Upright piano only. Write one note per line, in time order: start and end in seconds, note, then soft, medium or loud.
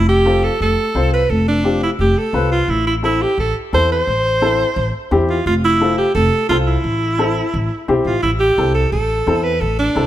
0.26 0.50 C4 medium
0.26 0.50 F4 medium
0.26 0.50 A4 medium
0.95 1.20 C4 medium
0.95 1.20 F4 medium
0.95 1.20 C5 medium
1.64 1.89 C4 medium
1.64 1.89 F4 medium
1.64 1.89 G4 medium
2.33 2.58 C4 medium
2.33 2.58 F4 medium
2.33 2.58 B4 medium
3.03 3.27 C4 medium
3.03 3.27 E4 medium
3.03 3.28 A4 medium
3.73 3.97 C4 medium
3.73 3.97 E4 medium
3.73 3.97 A4 medium
4.42 4.66 C4 medium
4.42 4.66 E4 medium
4.42 4.66 A4 medium
5.11 5.35 C4 medium
5.11 5.36 E4 medium
5.11 5.36 G4 medium
5.81 6.05 C4 medium
5.81 6.05 F4 medium
5.81 6.05 A4 medium
6.50 6.74 C4 medium
6.50 6.74 F4 medium
6.50 6.74 A4 medium
7.18 7.43 C4 medium
7.18 7.43 E4 medium
7.18 7.43 A4 medium
7.88 8.12 C4 medium
7.88 8.13 E4 medium
7.88 8.13 G4 medium
8.58 8.82 C4 medium
8.58 8.82 E4 medium
8.58 8.82 A4 medium
9.27 9.51 C4 medium
9.27 9.51 E4 medium
9.27 9.51 A4 medium
9.95 10.07 C4 medium
9.95 10.07 E4 medium
9.95 10.07 A4 medium